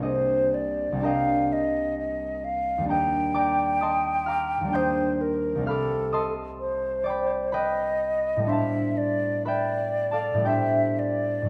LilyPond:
<<
  \new Staff \with { instrumentName = "Flute" } { \time 3/4 \key c \minor \tempo 4 = 64 c''8 d''8 f''8 ees''8 ees''8 f''8 | \key a \minor g''2 c''8 bes'8 | a'8 r8 c''4 ees''4 | e''8 d''8 d''4 e''8 d''8 | }
  \new Staff \with { instrumentName = "Harp" } { \time 3/4 \key c \minor <aes' bes' c'' ees'' bes''>4 <bes' ees'' g'' bes''>2 | \key a \minor <bes' ees'' g'' bes''>8 <d'' g'' bes'' d'''>8 <ees'' a'' c''' ees'''>8 <f'' bes'' d''' f'''>8 <g'' c''' ees''' g'''>4 | <f'' b'' d''' f'''>8 <ees'' a'' c''' ees'''>4 <d'' g'' b'' d'''>8 <b' ees'' g'' b''>4 | <c'' f'' a'' c'''>4 \tuplet 3/2 { <b' e'' g'' b''>4 <a' d'' f'' a''>8 } <g' c'' e'' g''>4 | }
  \new Staff \with { instrumentName = "Harp" } { \time 3/4 \key c \minor <c, g bes d' g'>4 <c, g bes d' g'>2 | \key a \minor <ees, g bes d' g'>2 <ees, g bes d' g'>4 | <c, g a c' g'>2. | <a, g a b d'>2 <a, g a b d'>4 | }
>>